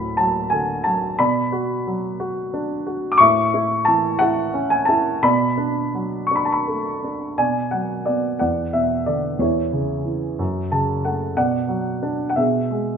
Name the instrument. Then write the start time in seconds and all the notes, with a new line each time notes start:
grand piano
Already playing: D2 A2 F#3 B5
0.17 F#3 A5
0.50 D3 G#5
0.84 F#3 A5
1.19 B2 D5 B5
1.52 F#4
1.87 F#3
2.20 F#4
2.54 D4
2.87 F#4
3.12 D6
3.18 A2 E5 C#6
3.54 E4
3.85 E3 A5
4.19 E4 F#5
4.54 C#4
4.70 G#5
4.85 E4 A5
5.23 B2 D5 B5
5.58 D4
5.94 F#3
6.27 C#6
6.31 D4
6.36 B5
6.45 A5
6.52 B5
6.68 A3
7.04 D4
7.38 B2 D5 G#5
7.71 F#3 F#5
8.06 B3 D5
8.39 E2 D5 F#5
8.73 B2 E5
9.06 D3 D5
9.39 E2 E4 C#5
9.72 C#3
10.05 E3
10.39 F#2
10.72 C#3 A5
11.05 A3 F#5
11.37 B2 D5 F#5
11.68 F#3
12.03 D4
12.29 F#5
12.36 B2 G#4 E5
12.71 G#3